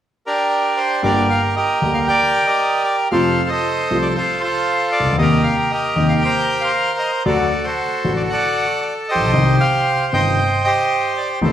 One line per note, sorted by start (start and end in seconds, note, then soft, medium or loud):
0.26 1.27 D4 medium
0.26 1.03 G4 medium
0.26 0.79 A#4 medium
0.77 1.01 C5 medium
1.03 1.25 G1 medium
1.03 1.25 G2 medium
1.03 1.25 D3 medium
1.03 1.25 G3 soft
1.03 1.25 A#3 soft
1.03 1.25 G4 medium
1.03 1.55 G4 medium
1.03 1.56 A#4 medium
1.03 1.28 D5 medium
1.30 1.42 F5 medium
1.56 2.47 G4 medium
1.56 2.07 A#4 medium
1.56 1.92 D#5 medium
1.82 2.04 D2 soft
1.82 2.04 D3 medium
1.82 2.04 G3 soft
1.82 2.04 A#3 soft
1.82 2.04 G4 soft
1.94 2.00 F5 medium
2.08 2.46 A#4 medium
2.08 2.83 D5 medium
2.08 2.48 G5 medium
2.46 3.09 G4 medium
2.46 3.08 A#4 medium
2.46 2.83 D#5 medium
2.84 2.96 D5 medium
3.11 3.34 F2 medium
3.11 3.33 C3 medium
3.11 3.34 F3 medium
3.11 3.34 A3 medium
3.11 3.34 F4 medium
3.11 3.50 A4 medium
3.11 3.50 C5 medium
3.11 3.48 F5 medium
3.50 4.16 A4 medium
3.50 4.14 C5 medium
3.50 3.98 D#5 medium
3.91 4.12 C2 soft
3.91 4.12 C3 soft
3.91 4.12 F3 soft
3.91 4.12 A3 soft
3.91 4.12 F4 soft
4.02 4.08 D5 medium
4.15 4.42 F4 soft
4.15 4.42 A4 medium
4.15 4.39 C5 medium
4.41 5.16 F4 medium
4.41 5.16 A4 medium
4.41 4.89 C5 medium
4.92 5.17 D5 medium
5.00 5.06 C2 soft
5.06 5.13 C#2 soft
5.13 5.19 D2 medium
5.18 5.41 D#2 medium
5.18 5.40 C3 medium
5.18 5.40 D#3 medium
5.18 5.40 G3 medium
5.18 5.40 A#3 medium
5.18 5.41 D#4 medium
5.18 5.72 G4 medium
5.18 5.71 A#4 medium
5.18 5.43 D#5 medium
5.43 5.55 F5 medium
5.71 6.71 G4 medium
5.71 6.23 A#4 medium
5.71 6.07 D#5 medium
5.96 6.18 D#2 medium
5.96 6.18 C3 soft
5.96 6.18 D#3 soft
5.96 6.18 G3 soft
5.96 6.18 A#3 soft
5.96 6.18 D#4 soft
6.09 6.15 F5 medium
6.22 6.62 A#4 medium
6.22 6.63 C5 medium
6.22 6.62 G5 medium
6.61 7.23 A#4 soft
6.61 7.24 C5 medium
6.61 6.97 F5 medium
6.99 7.11 D#5 medium
7.26 7.48 D2 medium
7.26 7.48 D3 medium
7.26 7.48 F#3 soft
7.26 7.48 A3 soft
7.26 7.48 F#4 medium
7.26 7.65 F#4 soft
7.26 7.66 A4 medium
7.26 7.66 D5 medium
7.64 8.66 F#4 medium
7.64 8.31 A4 soft
7.64 8.13 C5 medium
8.04 8.26 A1 soft
8.04 8.26 A2 soft
8.04 8.26 D3 soft
8.04 8.26 F#3 soft
8.04 8.26 A3 soft
8.04 8.26 F#4 soft
8.16 8.22 D5 medium
8.30 9.32 A4 medium
8.30 8.81 D5 medium
8.30 8.84 F#5 medium
8.82 8.94 D5 medium
9.09 10.10 G4 medium
9.09 9.61 C5 medium
9.09 9.57 D#5 medium
9.15 9.21 A1 soft
9.21 9.28 A#1 soft
9.26 9.34 B1 medium
9.33 9.56 C2 medium
9.33 9.56 C3 medium
9.33 9.56 D#3 soft
9.33 9.56 G3 soft
9.33 9.56 D#4 medium
9.60 10.13 C5 medium
9.60 10.09 F5 medium
10.12 10.35 G1 medium
10.12 10.35 G2 soft
10.12 10.34 C3 soft
10.12 10.35 D#3 soft
10.12 10.35 G3 soft
10.12 10.35 D#4 soft
10.12 10.65 C5 medium
10.12 10.63 D#5 medium
10.12 10.67 G5 medium
10.65 11.39 G4 medium
10.65 11.40 C5 medium
10.65 11.13 D#5 medium
11.17 11.29 D5 medium
11.41 11.52 A1 medium
11.41 11.52 A2 medium
11.41 11.52 C3 medium
11.41 11.52 D#3 medium
11.41 11.52 A3 soft
11.41 11.52 D#4 medium
11.41 11.52 D#4 soft
11.41 11.52 A4 soft
11.41 11.52 C5 medium